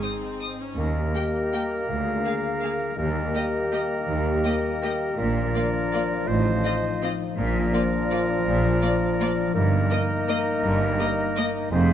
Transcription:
Already playing: harp G#2 G#3 C5, violin section D#4, clarinet G#4
0.02 viola section C4, harp D#4, violin section D#6
0.22 harp G#3
0.42 harp C5, violin section D#6
0.60 viola section C#4, harp D#4
0.77 cello section D#2, double bass section D#2, harp D#3, bassoon A#3, french horn section A#3 G4, clarinet G4, oboe A#4, flute D#5
0.87 harp G3
0.96 harp D#4
1.05 harp A#4
1.15 viola section A#3, harp G4, violin section G4 G5
1.24 harp D#5
1.34 harp A#5
1.43 harp G5
1.53 viola section A#3, violin section G4 G5, harp A#5
1.62 harp G4
1.71 harp A#4
1.80 harp D#4
1.88 cello section D2, double bass section D2, harp D3, french horn section G#4, clarinet G#4, flute F5
1.97 harp D4
2.06 harp G#3
2.15 harp F4
2.25 viola section A#3, violin section G#4 F5, harp A#4
2.34 harp G#4
2.44 harp F5
2.53 harp A#5
2.62 viola section A#3, violin section G#4 F5
2.72 harp A#4
2.82 harp F4
2.90 harp G#3
2.97 cello section D#2, double bass section D#2, harp D#3, french horn section A#3 G4, bassoon A#3, clarinet G4, oboe A#4, flute D#5
3.07 harp G3
3.16 harp D#4
3.25 harp A#4
3.34 viola section A#3, harp G4, violin section G4 D#5
3.45 harp D#5
3.54 harp A#5
3.63 harp G5
3.71 viola section A#3, violin section G4 D#5
3.82 harp G4
3.91 harp A#4
4.00 harp D#4
4.08 double bass section D#2, cello section D#2, harp D#3
4.17 harp G3
4.26 harp D#4
4.45 viola section A#3, harp G4, violin section G4 D#5
4.54 harp D#5
4.64 harp A#5
4.73 harp G5
4.83 viola section A#3, violin section G4 D#5, harp A#5
4.92 harp G4
5.01 harp A#4
5.10 harp D#4
5.18 double bass section A#1, cello section A#2, harp A#2, french horn section F3 D4, bassoon A#3, clarinet F4, oboe A#4, flute D5
5.27 harp A#3
5.37 harp F3
5.46 harp D4
5.55 viola section A#3, violin section F4 D5, harp A#4
5.65 harp F4
5.75 harp D5
5.84 harp A#5
5.93 viola section A#3, violin section F4 D5, harp D5
6.02 harp A#4
6.11 harp D4
6.20 harp F3
6.27 double bass section A1, cello section A2, harp A2, bassoon F3, french horn section D#4, oboe C5, flute D#5
6.37 harp D#3
6.46 harp F3
6.55 harp D#4
6.65 viola section C4, violin section F4 D#5, harp C5
6.74 harp F4
6.83 harp D#5
6.92 harp C6
7.02 viola section C4, violin section F4 D#5, harp D#5
7.11 harp C5
7.20 harp D#4
7.29 harp F3
7.37 double bass section A#1, harp A#2, cello section A#2, bassoon F3, french horn section F3 D4, clarinet F4, oboe A#4, flute D5
7.46 harp A#3
7.55 harp F3
7.65 harp D4
7.73 viola section A#3, violin section F4 D5, harp A#4
7.83 harp F4
7.93 harp D5
8.02 harp A#5
8.11 viola section A#3, violin section F4 D5, harp D5
8.21 harp A#4
8.29 harp D4
8.38 harp F3
8.46 double bass section A#1, harp A#2, cello section A#2
8.55 harp A#3
8.64 harp F3
8.74 harp D4
8.82 viola section A#3, violin section F4 D5, harp A#4
8.92 harp F4
9.02 harp D5
9.11 harp A#5
9.20 viola section A#3, violin section F4 D5, harp D5
9.29 harp A#4
9.38 harp D4
9.47 harp F3
9.54 double bass section G1, harp G2, cello section G2, bassoon A#3, clarinet D#4, oboe A#4, flute D#5
9.64 harp G3
9.73 harp A#3
9.83 harp D#4
9.91 french horn section A#3 D#4, viola section A#3, violin section A#4 D#5
10.02 harp D#4
10.11 harp D#5
10.20 harp A#5
10.28 viola section A#3, french horn section A#3 D#4, violin section A#4 D#5, harp D#5
10.38 harp A#4
10.46 harp D#4
10.55 harp A#3
10.63 double bass section G1, cello section G2, harp G2
10.72 harp G3
10.81 harp A#3
10.90 harp D#4
10.98 french horn section A#3 D#4, viola section A#3, harp A#4, violin section A#4 D#5
11.09 harp D#4
11.19 harp D#5
11.28 harp A#5
11.37 french horn section A#3 D#4, viola section A#3, violin section A#4 D#5, harp D#5
11.47 harp A#4
11.55 harp D#4
11.63 harp A#3
11.71 double bass section F1, cello section F2, harp F2, bassoon G#3, clarinet G#4, oboe C5, flute F5
11.80 harp C3

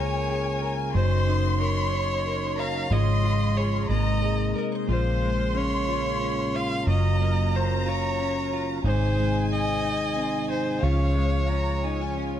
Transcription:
Already playing: fingered electric bass C#2, clean electric guitar C#3 C#4 G#4 A#4, tonewheel organ C#3 G#3 A#3 F4, violin section G#5
0.00 violin C#5
0.30 clean electric guitar G#4
0.62 clean electric guitar A#4
0.93 fingered electric bass F#1, clean electric guitar F#3, tonewheel organ F#3 D#4, violin C5, violin section C6
1.27 clean electric guitar D#4
1.60 clean electric guitar A#4, violin C#5
1.93 clean electric guitar C#5
2.26 clean electric guitar A#4
2.58 clean electric guitar C#5, violin F5, violin section A#5
2.91 fingered electric bass G#1, tonewheel organ F3 G#3 F4, clean electric guitar G#3 C#5, violin D#5, violin section C6
3.24 clean electric guitar F4
3.57 clean electric guitar G#4, violin C#5
3.89 fingered electric bass G#1, tonewheel organ C3 A#3 D#4, clean electric guitar G#3, violin D#5, violin section A#5
4.22 clean electric guitar G#4
4.55 clean electric guitar A#4
4.72 clean electric guitar C5
4.87 fingered electric bass A#1, clean electric guitar A#2 F4, tonewheel organ C#3 F4, violin C5, violin section C6
5.22 clean electric guitar G#3
5.55 clean electric guitar C#4, violin C#5
5.89 clean electric guitar F4
6.22 clean electric guitar C#4
6.54 clean electric guitar F4, violin F5
6.87 fingered electric bass F#1, clean electric guitar F#3 F4, tonewheel organ F#3, violin D#5, violin section A#5
7.22 clean electric guitar A#3
7.55 clean electric guitar C#4, violin C5
7.86 clean electric guitar F4, violin C#5
8.19 clean electric guitar C#4
8.53 clean electric guitar F4
8.84 fingered electric bass G#1, clean electric guitar G#2 D#4, tonewheel organ C3 D#3 G#3 D#4, violin C5, violin section G#5
9.19 clean electric guitar G#3
9.51 clean electric guitar C4, violin D#5
9.82 clean electric guitar D#4
10.16 clean electric guitar C4
10.50 clean electric guitar D#4, violin C5
10.82 fingered electric bass C#2, clean electric guitar C#3 F4, tonewheel organ C#3 F3 F4, violin C#5, violin section F5
11.15 clean electric guitar G#3
11.49 clean electric guitar C#4, violin section A#5
11.84 clean electric guitar D#4, violin section G#5
12.01 clean electric guitar F4
12.17 clean electric guitar C#4

